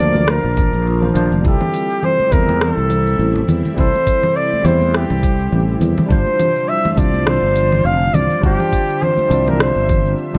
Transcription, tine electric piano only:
Already playing: F3 A#3 A5
0.00 D4 A#4
1.01 F3 A#3 D4 C5
1.14 F3 A#3 D4 C5
1.41 G3 C4
1.46 E4 A4
2.29 G3 C4
2.33 E4 C5
3.74 G3 C4
3.78 E4 A4
4.62 G3 C4
4.66 E4 C5
6.06 G3 D4
6.11 F4 C5
6.95 G3 D4 F4
7.00 D5
8.41 G3 D4
8.45 F4 C5
9.28 G3 D4
9.32 F4 D5
10.33 G3 D4

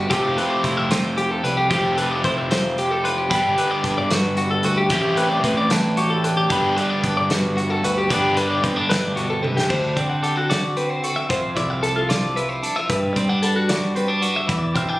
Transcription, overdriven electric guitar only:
Already playing: G3 B3
0.09 F2 C3 F3 A3 C4
1.70 F2 C3 F3 A3 C4
3.29 G2 D3 G3 B3 D4
4.89 A2 E3 A3 C4 E4
6.49 G2 D3 G3 B3 D4
8.08 G2 D3 G3 B3 D4

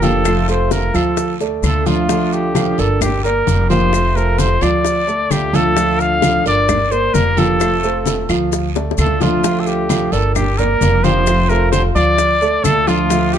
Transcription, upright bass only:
Already playing: F1
0.95 D2
1.63 D2
2.78 G1
3.47 F1
4.62 D2
5.31 D2
6.45 G1
7.14 F1
8.29 D2
8.98 D2
10.12 G1
10.81 F1
11.95 D2
12.64 D2

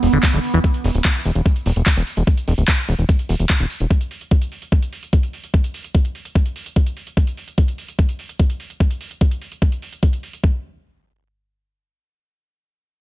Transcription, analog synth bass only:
0.03 E1
0.13 E1
0.33 E1
0.54 E1
0.84 E1
0.95 D1
1.25 E1
1.35 E1
1.66 E1
1.76 E1
1.97 E1
2.17 E1
2.48 E1
2.58 D1
2.88 E1
2.99 E1
3.29 E1
3.39 E1
3.60 E1
3.80 E1

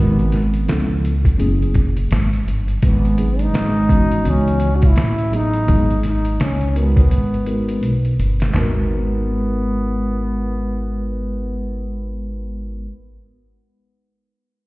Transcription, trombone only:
Already playing: B3
2.84 B3
3.42 D#4
4.29 C#4
4.76 F#4
4.87 E4
5.36 D#4
6.08 D#4
6.43 C#4
6.72 C#4
6.79 B3
8.54 B3

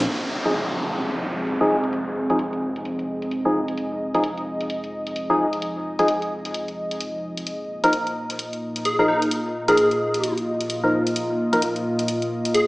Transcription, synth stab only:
0.45 F3 D#4 G#4
1.61 F3 D#4 G#4
2.30 F3 D#4 G#4
3.45 F3 D#4 G#4
4.14 F3 D#4 G#4
5.30 F3 D#4 G#4
5.99 F3 D#4 G#4
7.84 F3 D#4 A#4
8.99 F3 D#4 A#4
9.68 F3 D#4 A#4
10.84 F3 D#4 A#4
11.53 F3 D#4 A#4

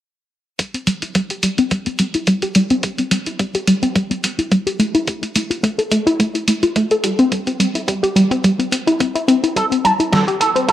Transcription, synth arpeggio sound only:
0.59 G3
0.74 C4
0.87 G3
1.03 E4
1.15 G3
1.31 G4
1.43 G3
1.59 C4
1.71 G3
1.87 C4
2.00 G3
2.15 E4
2.27 G3
2.43 G4
2.56 G3
2.71 C4
2.83 G3
2.99 C4
3.11 G3
3.27 E4
3.40 G3
3.55 G4
3.68 G3
3.83 C4
3.96 G3
4.11 C4
4.24 G3
4.39 E4
4.51 G3
4.67 G4
4.79 A3
4.95 E4
5.07 A3
5.23 E4
5.36 A3
5.50 F4
5.63 A3
5.78 A4
5.91 A3
6.07 E4
6.20 A3
6.35 E4
6.48 A3
6.63 F4
6.76 A3
6.91 A4
7.04 G3
7.19 C4
7.32 G3
7.47 C4
7.60 G3
7.75 E4
7.88 G3
8.03 G4
8.16 G3
8.31 C4
8.44 G3
8.59 C4
8.72 C4
8.87 E4
9.00 C4
9.15 E4
9.28 C4
9.44 E4
9.56 G3
9.72 C4
9.85 G3
10.00 E4
10.12 G3
10.28 G4
10.41 A4
10.56 C4
10.69 G3

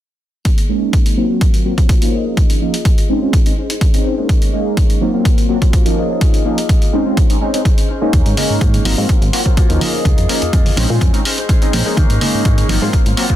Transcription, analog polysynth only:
0.69 G#3 A#3 C#4 D#4
1.17 F#3 A#3 C4 D#4
1.29 F#3 A#3 C4 F5
1.65 F#3 A#3 C4 F#4
1.77 F#3
2.01 F3 A#3 C#4 D#4
2.61 F3 A#3 C#4 D#4
3.09 G#3 C4 C#4 D#4
3.22 G#3 C4 C#4 F4
3.46 G#3 C4 C#4 D#4
3.94 G#3 C4 C#4 D#4
4.18 G#3 A#3 C#4 D#4
4.53 G#3 A#3 C#4 D#4
5.01 F#3 A#3 C4 D#4
5.14 F#3 A#3 C4 F5
5.49 F#3 A#3 C4 F#4
5.62 F#3 F4
5.85 F3 A#3 C#4 D#4
6.45 F3 A#3 C#4 D#4
6.93 G#3 C4 C#4 D#4
7.06 G#3 C4 C#4 F4
7.30 G#3 C4 C#4 D#4
7.41 G#3 C4 C#4 D#4
7.54 G#3 C4 C#4 D#4
8.01 G#3 A#3 C#4 D#4
8.37 G#3 A#3 C#4 D#4
8.85 F#3 A#3 C4 D#4
8.98 F#3 A#3 C4 F5
9.33 F#3 A#3 C4 F#4
9.45 F#3 A#3 C4 F4
9.69 F3 A#3 C#4 D#4
10.29 F3 A#3 C#4 D#4
10.77 G#3 C4 C#4 D#4
10.89 G#3 C4 C#4 F4
11.13 G#3 C4 C#4 D#4
11.61 G#3 C4 C#4 D#4
11.85 G#3 A#3 C#4 D#4
12.21 G#3 A#3 C#4 D#4
12.69 F#3 A#3 C4 D#4
12.81 F#3 A#3 C4 F5
13.17 F#3 A#3 C4 F#4
13.29 F#3 A#3 C4 F4

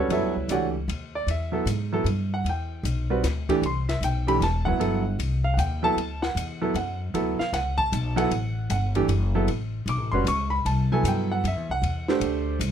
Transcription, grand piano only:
Already playing: G3 F#4
0.00 B4
0.11 F#3 B3 E4 A4 C#5 E5
0.50 E3 A3 D4 F#4 G4 C#5 D5 F#5
1.15 D5
1.30 E5
1.52 F#3 B3 E4 A4
1.93 F#3 B3 E4 A4
2.34 F#5
2.49 G5
3.10 G3 C4 F#4 B4
3.49 E3 A3 D4 G4
3.66 C6
3.89 E5
4.04 G5
4.27 E3 A3 D4 G4 B5
4.43 A5
4.65 F#3 B3 E4 B4 F#5
4.80 F#3 B3 E4 A4
5.44 F5
5.54 F#5
5.59 G5
5.83 F#3 B3 E4 A4 A5
6.22 F#5
6.61 F#3 B3 E4 A4
6.76 F#5
7.14 F#3 B3 E4 A4
7.39 F5
7.54 F#5
7.78 A5
8.16 F#3 B3 E4 A4 F#5
8.71 F#5
8.95 E3 A3 D4 G4
9.35 F#3 B3 E4 A4
9.89 D6
10.12 G3 C#4 F#4 B4 C6
10.28 C#6
10.50 B5
10.66 A5
10.92 F#3 B3 E4 A4 G#5
11.08 G5
11.32 F#5
11.47 E5
11.71 F#5
12.09 A3 D4 G4 C5

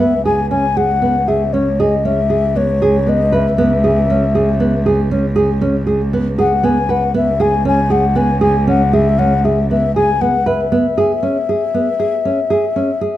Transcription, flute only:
0.00 E5
0.25 G#5
0.51 G#5
0.77 F#5
1.28 E5
1.53 C#5
1.80 D#5
2.05 E5
2.57 C#5
3.09 D#5
3.35 E5
6.40 F#5
6.65 G#5
6.91 F#5
7.16 E5
7.41 G#5
7.68 G#5
7.91 F#5
8.17 G#5
8.42 G#5
8.69 F#5
8.94 E5
9.19 F#5
9.45 E5
9.71 E5
9.96 G#5
10.21 F#5
10.47 E5

